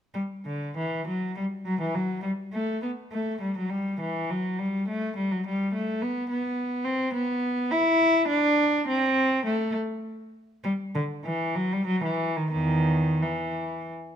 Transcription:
cello
0.14 G3
0.46 D3
0.78 E3
1.08 F#3
1.37 G3
1.66 F#3
1.81 E3
1.95 F#3
2.23 G3
2.53 A3
2.83 B3
3.12 A3
3.41 G3
3.58 F#3
3.70 G3
4.00 E3
4.31 F#3
4.59 G3
4.88 A3
5.16 G3
5.32 F#3
5.47 G3
5.74 A3
6.03 B3
6.30 B3
6.85 C4
7.14 B3
7.71 E4
8.28 D4
8.88 C4
9.46 A3
10.64 G3
10.95 D3
11.25 E3
11.56 F#3
11.73 G3
11.87 F#3
12.04 E3
12.37 D#3
12.53 E2 D#3
13.22 E3

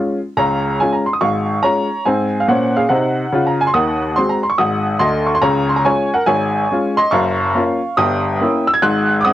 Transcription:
upright piano
Already playing: G#3 C#4 F4
0.37 C#2 C#3 C#5 A#5
0.80 G#3 C#4 F4 G#5
0.92 A#5
1.06 C6
1.13 D#6
1.21 G#1 G#2 F5 C#6
1.62 G#3 C#4 F4 C#5 A#5
2.05 G#2 C4 C5 G#5
2.40 F5
2.48 A#2 C#4 C5 F#5
2.76 G#4 F5
2.89 C3 D#4 C5 F#5
3.32 C#3 F4
3.47 A#5
3.61 G#5
3.67 C6
3.74 D#2 D#3 F#5 D#6
4.16 G#3 C4 F#4 C6
4.30 A#5
4.43 C6
4.50 C#6
4.58 G#1 G#2 F#5 D#6
4.99 D2 D3 D#5 C6
5.27 C#6
5.35 C6
5.42 C#2 C#3 C#5 A#5
5.69 C6
5.76 A#5
5.85 G#3 C#4 F4 C#5 G#5
6.14 A#4 F#5
6.26 G#1 G#2 C#5 G#5
6.71 G#3 C#4 F4
6.97 D#5 C6
7.11 F#1 F#2 F5 C#6
7.55 A#3 C#4 F4
7.97 G1 G2 G5 D#6
8.40 A#3 C#4 E4
8.67 E6
8.73 G#6
8.82 G#1 G#2 C6 F#6
9.21 D6 D#6
9.25 G#3 C4 D#4 F#5

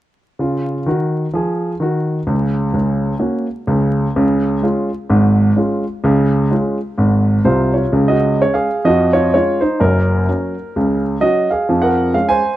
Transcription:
grand piano
0.39 C#3 F4
0.86 D#3 F#4
1.33 F3 G#4
1.80 D#3 F#4
2.27 C#2 C#3
2.74 C#2 C#3
3.19 A#3 C#4 F#4
3.67 C#2 C#3
4.16 C#2 C#3
4.62 G#3 C#4 F4
5.10 G#1 G#2
5.56 G#3 C#4 F4
6.04 C#2 C#3
6.51 G#3 C#4 F4
6.98 G#1 G#2
7.44 C2 C3 F4 C5
7.74 F4 C#5
7.92 C#2 C#3
8.08 F#4 D#5
8.40 G#3 C#4 C#5
8.54 G#4 F5
8.84 F2 F3 F#4 D#5
9.13 F4 C#5
9.33 G#3 C#4 F4 C#5
9.61 D#4 C5
9.80 F#1 F#2 C#4 A#4
10.28 F#3 C#4
10.76 C#2 C#3
11.20 F#3 C#4 F#4 D#5
11.51 G#4 F5
11.69 F2 F3
11.82 A#4 F#5
12.13 G#3 C#4 F5
12.29 C5 G#5

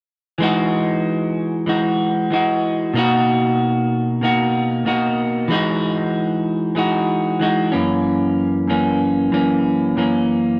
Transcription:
clean electric guitar
0.38 E3 G#3
0.42 D#4 F#4
1.66 E3 G#3 D#4 F#4
2.30 E3 G#3 D#4 F#4
2.93 B2 A#3 D#4
2.99 F#4
4.21 B2 A#3 D#4 F#4
4.85 B2 A#3 D#4 F#4
5.48 E3 G#3 D#4
5.53 F#4
6.75 E3 G#3 D#4 F#4
7.39 E3 G#3 D#4 F#4
7.72 F#2 E3 A#3 C#4
8.67 F#2 E3 A#3 C#4
9.31 F#2 E3 A#3 C#4
9.96 F#2 E3 A#3 C#4

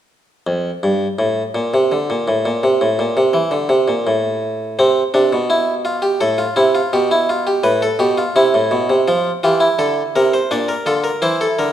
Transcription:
harpsichord
0.47 F2
0.83 G2
1.19 A2
1.55 A#2
1.74 C3
1.92 D3
2.10 A#2
2.28 A2
2.45 A#2
2.63 C3
2.81 A2
2.99 A#2
3.17 C3
3.33 E3
3.51 D3
3.69 C3
3.88 A#2
4.07 A2
4.79 C3 C4
5.14 C3 D4
5.33 B2
5.50 E4
5.85 F4
6.02 G4
6.21 A2 A4
6.38 F4
6.56 C3 E4
6.75 F4
6.93 B2 G4
7.11 E4
7.29 F4
7.47 G4
7.63 A2 B4
7.82 A4
7.99 B2 G4
8.18 F4
8.36 C3 E4
8.54 A2
8.71 B2
8.90 C3
9.08 F3 F4
9.43 E3 F4 G4
9.60 E4
9.79 D3 A4
10.16 C3 A#4
10.34 C5
10.51 A#2 D4 D5
10.69 A#4
10.86 D3 F4 A4
11.04 A#4
11.22 E3 E4 C5
11.41 A4
11.59 D3 A#4

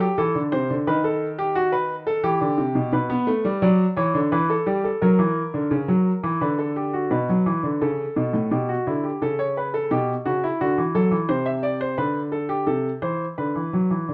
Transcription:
grand piano
0.00 G4
0.18 E3 A4
0.35 D3
0.52 C3 C5
0.70 D3
0.87 D#3 B4
1.04 A4
1.38 G4
1.55 F#4
1.72 B4
2.07 A4
2.23 E3 G4
2.41 D3
2.58 C3
2.75 B2
2.93 B2 B4
3.10 B3
3.27 A3
3.45 G3
3.62 F#3 D5
3.96 E3 C#5
4.14 D3
4.32 E3 B4
4.50 A4
4.66 G3 G4
4.84 A4
5.02 F#3 A#4
5.19 E3
5.54 D3
5.71 C#3
5.88 F#3
6.23 E3
6.41 D3 B4
6.59 A4
6.76 G4
6.93 F#4
7.11 B2 B4
7.29 F#3
7.46 E3
7.63 D3
7.81 C#3 A4
8.16 B2
8.33 A2
8.51 B2 G4
8.69 F#4
8.87 D3 E4
9.04 G4
9.22 C#3 A4
9.39 C#5
9.57 B4
9.74 A4
9.91 B2 G4
10.25 C#3 F#4
10.44 E4
10.61 D3 F#4
10.78 E3
10.95 F#3 A4
11.11 E3
11.29 C3 C5
11.46 E5
11.63 D5
11.81 C5
11.98 D3 B4
12.32 A4
12.49 G4
12.67 C3 A4
13.02 E3 C5
13.38 D3 B4
13.56 E3
13.73 F#3
13.91 E3
14.09 D3

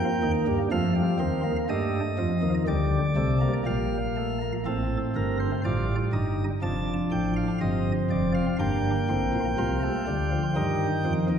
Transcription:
pipe organ
Already playing: A#3 G5
0.23 D#2 D#3
0.47 G2 G3
0.71 F2 F3 A3 F5
0.96 G3
1.19 D#2 D#3 C4
1.44 A#3
1.69 G2 G3 A3 D#5
2.18 F2 F3
2.42 D#2 D#3
2.67 D2 D3 G3 D5
3.16 C2 C3 A3
3.41 A#3
3.66 A#1 A#2 G3 F5
4.16 A3
4.42 A#3
4.65 A1 A2 A3 C4 A4
5.16 G1 G2 A#4
5.40 C5
5.65 A1 A2 G3 F4 D5
6.13 G1 G2 D#4 D#5
6.62 F1 F2 F3 D4 A5
7.11 A1 A2 G5
7.36 F5
7.61 G1 G2 C4 D#5
8.10 F1 F2 D5
8.34 F5
8.59 G1 G2 A#3 D4 G5
9.09 A1 A2 C4
9.34 A#1 A#2
9.58 C2 C3 A#3 F4
9.83 A3
10.07 D2 D3 G3
10.32 F3
10.56 G2 D#3 G3 D#4
11.04 F2 F3
11.29 D#2 D#3

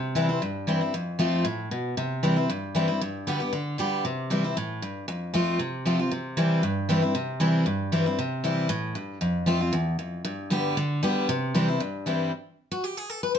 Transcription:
steel-string acoustic guitar
Already playing: C3
0.15 E3 G3 C4 E4
0.29 C4 E4
0.42 G2
0.67 E3 G3 C4 E4
0.81 C4 E4
0.94 F2
1.19 F3 A3 C4 F4
1.45 A2
1.71 B2
1.97 C3
2.23 E3 G3 C4 E4
2.36 C4 E4
2.50 G2
2.75 E3 G3 C4 E4
2.88 C4 E4
3.01 G2
3.27 D3 G3 B3 G4
3.40 B3 G4
3.53 D3
3.78 D3 G3 B3 G4
4.05 C3
4.30 E3 G3 C4 E4
4.44 C4 E4
4.57 A2
4.82 G2
5.08 F2
5.34 F3 A3 C4 F4
5.59 C3
5.86 F3 A3 C4 F4
5.99 C4 F4
6.11 C3
6.37 E3 G3 C4 E4
6.63 G2
6.89 E3 G3 C4 E4
7.02 C4 E4
7.15 C3
7.40 E3 G3 C4 E4
7.66 G2
7.92 E3 G3 C4 E4
8.06 C4 E4
8.19 C3
8.44 E3 G3 C4 E4
8.69 A2
8.95 G2
9.21 F2
9.46 F3 A3 C4 F4
9.61 C4 F4
9.73 E2
9.99 F2
10.25 G2
10.50 D3 G3 B3 G4
10.77 D3
11.03 D3 G3 B3 G4
11.29 C3
11.54 E3 G3 C4 E4
11.68 C4 E4
11.80 G2
12.06 E3 G3 C4 E4
12.71 F#4
12.84 G4
12.97 G#4
13.10 A4
13.23 B4
13.35 C5

